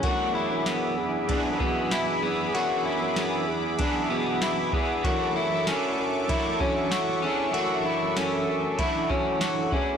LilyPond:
<<
  \new Staff \with { instrumentName = "Analog synth pad" } { \time 4/4 \key e \mixolydian \tempo 4 = 96 << { d'''1~ | d'''1~ | d'''1~ | d'''1 | } \\ { <gis' e'' b''>1~ | <gis' e'' b''>1 | <a' e'' cis'''>1~ | <a' e'' cis'''>1 | } >> }
  \new Staff \with { instrumentName = "Clean electric guitar" } { \time 4/4 \key e \mixolydian fis'8 e'8 b4 d'8 b8 e'8 b8 | fis'8 e'8 b4 d'8 b8 e'8 b8 | fis'8 e'8 cis'4 e'8 cis'8 fis'8 cis'8 | fis'8 e'8 cis'4 e'8 cis'8 fis'8 cis'8 | }
  \new Staff \with { instrumentName = "Clean electric guitar" } { \time 4/4 \key e \mixolydian <fis, e b d' fis' gis'>2 <fis, e b d' fis' gis'>2 | <fis, e b d' fis' gis'>2 <fis, e b d' fis' gis'>4. <b d' fis' gis'>8 | <fis, e a d' e' fis'>4 <a d' e' fis'>4 <fis, e a d' e' fis'>4. <a d' e' fis'>8 | <fis, e a d' e' fis'>2 <fis, e a d' e' fis'>4. <a d' e' fis'>8 | }
  \new Staff \with { instrumentName = "Bassoon" } { \clef bass \time 4/4 \key e \mixolydian fis,8. fis,8. e,4 b,4 e,8 | fis,8. fis,8. e,8 r8 b,4 e,8 | fis,8. fis,8. fis,4 fis4 e,8 | fis,8. fis,8. fis,8 r8 fis4 e,8 | }
  \new DrumStaff \with { instrumentName = "Drums" } \drummode { \time 4/4 <bd cymr>4 <cymr sn tamb>4 <bd cymr>8 bd8 <cymr sn tamb>4 | cymr4 <cymr sn tamb>4 <bd cymr>4 <cymr sn tamb>8 bd8 | <bd cymr>4 <cymr sn tamb>4 <bd cymr>8 bd8 <cymr sn tamb>4 | cymr4 <cymr sn tamb>4 <bd cymr>8 bd8 <cymr sn tamb>8 bd8 | }
>>